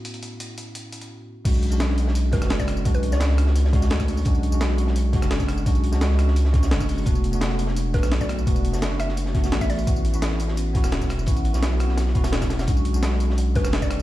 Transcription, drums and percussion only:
0.05 closed hi-hat
0.14 closed hi-hat
0.23 closed hi-hat
0.40 closed hi-hat
0.58 closed hi-hat
0.75 closed hi-hat
0.92 closed hi-hat
1.01 closed hi-hat
1.45 kick, closed hi-hat, crash, tambourine
1.54 tambourine
1.63 closed hi-hat
1.72 tambourine
1.80 snare, closed hi-hat, tambourine
1.89 snare
1.98 closed hi-hat, tambourine
2.08 snare
2.15 closed hi-hat, tambourine
2.32 kick, snare, closed hi-hat
2.42 cross-stick, snare, closed hi-hat, tambourine
2.50 snare, closed hi-hat
2.59 kick, snare, closed hi-hat, tambourine
2.67 cross-stick, closed hi-hat, tambourine
2.77 tambourine
2.85 kick, closed hi-hat, tambourine
2.94 closed hi-hat, tambourine
3.03 closed hi-hat
3.12 snare, tambourine
3.20 snare, closed hi-hat, tambourine
3.29 snare
3.38 cross-stick, closed hi-hat, tambourine
3.46 snare
3.56 closed hi-hat, tambourine
3.65 snare
3.73 kick, snare, closed hi-hat
3.82 snare, closed hi-hat, tambourine
3.90 snare, closed hi-hat
3.99 kick, cross-stick, snare, closed hi-hat, tambourine
4.08 closed hi-hat, open hi-hat, tambourine
4.17 tambourine
4.25 kick, closed hi-hat, tambourine
4.35 tambourine
4.43 closed hi-hat
4.52 tambourine
4.61 snare, closed hi-hat, tambourine
4.69 snare
4.78 closed hi-hat, tambourine
4.87 snare
4.96 closed hi-hat, tambourine
5.13 kick, snare, closed hi-hat
5.22 cross-stick, snare, closed hi-hat, tambourine
5.31 snare, closed hi-hat
5.40 kick, snare, closed hi-hat, tambourine
5.49 cross-stick, closed hi-hat, tambourine
5.58 tambourine
5.66 kick, closed hi-hat, tambourine
5.75 closed hi-hat, tambourine
5.84 closed hi-hat
5.92 snare, tambourine
6.01 snare, closed hi-hat, tambourine
6.11 snare
6.19 cross-stick, closed hi-hat, tambourine
6.28 snare
6.36 closed hi-hat, tambourine
6.45 snare
6.53 kick, snare, closed hi-hat
6.63 snare, closed hi-hat, tambourine
6.71 snare, closed hi-hat
6.80 kick, cross-stick, snare, closed hi-hat, tambourine
6.89 closed hi-hat, open hi-hat, tambourine
6.98 tambourine
7.06 kick, closed hi-hat, tambourine
7.15 tambourine
7.24 closed hi-hat
7.33 tambourine
7.41 snare, closed hi-hat, tambourine
7.50 snare
7.59 closed hi-hat, tambourine
7.67 snare
7.76 closed hi-hat, tambourine
7.94 kick, snare, closed hi-hat
8.03 cross-stick, snare, closed hi-hat, tambourine
8.12 snare, closed hi-hat
8.21 kick, snare, closed hi-hat, tambourine
8.29 cross-stick, closed hi-hat, tambourine
8.39 tambourine
8.47 kick, closed hi-hat, tambourine
8.56 closed hi-hat, tambourine
8.65 closed hi-hat
8.73 snare, tambourine
8.82 snare, closed hi-hat, tambourine
8.91 snare
9.00 cross-stick, closed hi-hat, tambourine
9.09 snare
9.17 closed hi-hat, tambourine
9.26 snare
9.35 kick, snare, closed hi-hat
9.44 snare, closed hi-hat, tambourine
9.52 snare, closed hi-hat
9.61 kick, cross-stick, snare, closed hi-hat, tambourine
9.70 closed hi-hat, open hi-hat, tambourine
9.79 tambourine
9.87 kick, closed hi-hat, tambourine
9.96 tambourine
10.05 closed hi-hat
10.14 tambourine
10.22 snare, closed hi-hat, tambourine
10.31 snare
10.40 closed hi-hat, tambourine
10.48 snare
10.57 closed hi-hat, tambourine
10.75 kick, snare, closed hi-hat
10.84 cross-stick, snare, closed hi-hat, tambourine
10.92 snare, closed hi-hat
11.01 kick, snare, closed hi-hat, tambourine
11.09 cross-stick, closed hi-hat, tambourine
11.19 tambourine
11.26 kick, closed hi-hat, tambourine
11.37 closed hi-hat, tambourine
11.45 closed hi-hat
11.54 snare, tambourine
11.63 snare, closed hi-hat, tambourine
11.72 snare
11.80 cross-stick, closed hi-hat, tambourine
11.89 snare
11.97 snare, closed hi-hat, tambourine
12.07 snare
12.15 kick, closed hi-hat
12.24 snare, closed hi-hat, tambourine
12.32 snare, closed hi-hat
12.41 kick, cross-stick, snare, closed hi-hat, tambourine
12.50 snare, closed hi-hat, tambourine
12.59 snare, closed hi-hat, tambourine
12.67 kick, closed hi-hat, tambourine
12.77 tambourine
12.85 closed hi-hat
12.94 tambourine
13.03 snare, closed hi-hat, tambourine
13.12 snare
13.20 closed hi-hat, tambourine
13.30 snare
13.38 closed hi-hat, tambourine
13.55 kick, snare, closed hi-hat
13.65 cross-stick, snare, closed hi-hat, tambourine
13.72 snare, closed hi-hat
13.82 kick, snare, closed hi-hat, tambourine
13.90 cross-stick, closed hi-hat, tambourine

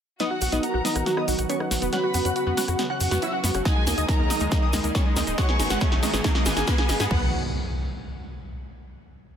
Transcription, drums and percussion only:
0.20 snare, closed hi-hat, shaker
0.41 open hi-hat, shaker
0.52 snare, closed hi-hat, shaker
0.63 closed hi-hat, shaker
0.85 snare, open hi-hat, shaker
0.95 cross-stick, closed hi-hat, shaker
1.06 snare, closed hi-hat, shaker
1.17 cross-stick
1.28 open hi-hat, shaker
1.39 closed hi-hat, shaker
1.50 closed hi-hat, shaker
1.60 cross-stick
1.71 snare, open hi-hat, shaker
1.82 closed hi-hat, shaker
1.92 snare, closed hi-hat, shaker
2.14 open hi-hat, shaker
2.25 closed hi-hat, shaker
2.36 closed hi-hat, shaker
2.57 snare, open hi-hat, shaker
2.68 cross-stick, closed hi-hat, shaker
2.79 snare, closed hi-hat, shaker
3.00 open hi-hat, shaker
3.11 snare, closed hi-hat, shaker
3.22 closed hi-hat, shaker
3.44 snare, open hi-hat, shaker
3.54 cross-stick, closed hi-hat, shaker
3.65 kick, snare, closed hi-hat, shaker
3.87 snare, open hi-hat, shaker
3.98 closed hi-hat, shaker
4.09 kick, snare, closed hi-hat, shaker
4.30 snare, open hi-hat, shaker
4.40 closed hi-hat, shaker
4.51 kick, snare, closed hi-hat, shaker
4.73 snare, open hi-hat, shaker
4.84 closed hi-hat, shaker
4.95 kick, snare, closed hi-hat, shaker
5.16 snare, open hi-hat, shaker
5.27 closed hi-hat, shaker
5.38 kick, snare, closed hi-hat, shaker
5.49 snare
5.60 snare, open hi-hat, shaker
5.70 snare, closed hi-hat, shaker
5.81 kick, snare, closed hi-hat, shaker
5.92 snare
6.03 snare, open hi-hat, shaker
6.14 snare, closed hi-hat, shaker
6.24 kick, snare, closed hi-hat, shaker
6.35 snare
6.46 snare, open hi-hat, shaker
6.57 snare, closed hi-hat, shaker
6.67 kick, snare, closed hi-hat, shaker
6.78 snare
6.89 snare, open hi-hat, shaker
7.00 snare, closed hi-hat, shaker
7.11 kick, crash

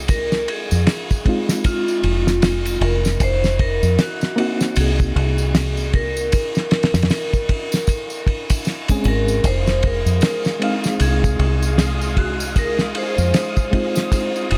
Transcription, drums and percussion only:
0.08 kick, ride, tambourine
0.32 snare, tambourine
0.48 ride
0.71 tambourine
0.87 snare, ride, tambourine
1.11 kick, tambourine
1.26 kick, ride
1.49 snare, tambourine, triangle
1.64 kick, ride, tambourine
1.88 tambourine
2.04 ride
2.27 snare, tambourine
2.42 snare, ride, tambourine
2.65 ride, tambourine, triangle
2.81 ride
3.05 snare, tambourine
3.20 kick, ride, tambourine
3.44 snare, tambourine
3.59 kick, ride
3.83 tambourine
3.99 snare, ride, tambourine
4.21 snare, tambourine
4.38 ride
4.61 snare, tambourine
4.76 ride, tambourine
5.00 kick, tambourine
5.16 ride
5.38 tambourine
5.55 snare, ride, tambourine
5.77 tambourine
5.93 kick, ride
6.17 tambourine
6.32 kick, ride, tambourine
6.55 snare, tambourine
6.71 snare, ride
6.83 snare, ride
6.94 snare, ride, tambourine
7.03 snare, ride
7.10 snare, ride, tambourine
7.33 kick, tambourine
7.49 kick, ride
7.72 snare, tambourine, triangle
7.87 kick, ride, tambourine
8.10 tambourine
8.27 kick, ride
8.50 kick, ride, tambourine
8.65 snare, tambourine
8.88 kick, ride, tambourine, triangle
9.04 ride, triangle
9.28 tambourine
9.44 kick, ride, tambourine
9.67 snare, tambourine
9.83 kick, ride
10.06 tambourine
10.21 snare, ride, tambourine
10.45 snare, tambourine
10.62 ride
10.84 snare, tambourine
11.00 ride, tambourine
11.24 kick, tambourine
11.39 ride
11.63 tambourine
11.78 snare, ride, tambourine
12.01 tambourine
12.17 kick, ride
12.40 tambourine
12.56 kick, ride, tambourine
12.79 snare, tambourine
12.95 ride
13.18 tambourine
13.34 snare, ride, tambourine
13.56 kick, tambourine
13.73 kick, ride
13.96 snare, tambourine, triangle
14.12 kick, ride, tambourine
14.36 tambourine
14.51 ride

